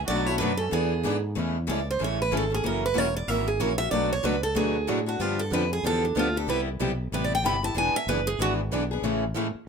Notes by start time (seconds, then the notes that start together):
0.06 B1 B2 F#3 A3 F#4 D5
0.10 D4 F#4 B4
0.26 D4 E4 F#4 C#5
0.30 A3
0.38 F#2 B2 F#3 A3 D4 F#4 B4
0.42 B4
0.57 C#4 A4
0.71 E2 E3 B3 D4 G#4 B4
1.03 G#2 E3 B3 D4 G#4 B4
1.35 E2 C#3 E3 G#3 A3 C#4 E4 G#4 A4
1.67 C#2 C#3 E3 G#3 A3 C#4 E4 G#4 A4 D5
1.91 C5
1.99 A1 C#3 E3 G#3 A3 C#4 E4 G#4 A4
2.04 C#5
2.22 B4
2.31 G#1 C#3 E3 G#3 A3 C#4 E4 G#4 A4
2.37 A4
2.50 A3 C#4 G#4
2.54 G#4
2.63 F#1 C#3 E3 F#3 A#3 C#4 E4 F#4 A#4
2.86 B4
2.94 E1 C#3 E3 F#3 A#3 C#4 E4 F#4 A#4
2.98 C#5
3.17 D5
3.28 G#1 C#3 E3 F#3 A#3 C#4 E4 F#4 A#4 E5
3.48 G#4
3.60 A#1 C#3 E3 F#3 A#3 C#4 E4 F#4 A#4 C#5
3.78 A#3 C#4 F#4 E5
3.91 B1 B2 F#3 A3 D4 F#4 B4 D5
4.13 C#5
4.23 C#2 B2 F#3 A3 D4 F#4 B4
4.43 A4
4.55 D2 B2 F#3 A3 D4 F#4 G#4 B4
4.88 A2 B2 F#3 A3 D4 F#4 B4
5.06 A3 D4 F#4
5.20 G2 D3 F3 B3 D4 F4 G4
5.39 A4
5.52 F2 D3 F3 B3 D4 G4 B4
5.73 G#4
5.83 E2 D3 F3 B3 D4 G4 A4
6.05 D4
6.16 D2 D3 F3 B3 D4 F4 G4
6.36 B3 D4 G4 A4
6.48 C2 C3 G3 B3 E4 G4 B4
6.80 B1 C3 G3 B3 E4 G4
7.12 A1 C3 G3 B3 E4 G4 B4
7.24 D5
7.35 G5
7.43 G1 C3 G3 B3 E4 G4 B5
7.63 B3 E4 G4 A5
7.74 E1 E3 B3 D4 G#4 B4 G#5
7.96 E5
8.07 F#1 E3 B3 D4 G#4 B4
8.11 B4
8.27 G#4
8.39 G#1 E3 B3 D4 F#4 G#4 B4
8.71 B1 E3 B3 D4 G#4 B4
8.91 B3 D4 G#4
9.02 A1 C#3 E3 G#3 A3 C#4 E4 G#4 A4
9.35 A2 C#3 E3 G#3 A3 C#4 E4 G#4 A4
9.55 muted fingered electric bass stroke